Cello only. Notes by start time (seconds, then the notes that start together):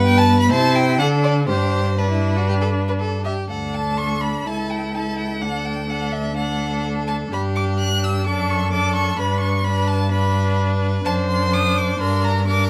Already playing: G2
0.51 C3
0.98 D3
1.48 G2
3.49 D2
4.47 C#2
5.42 D2
7.32 G2
8.26 F#2
9.19 G2
11.05 F#2
12.00 G2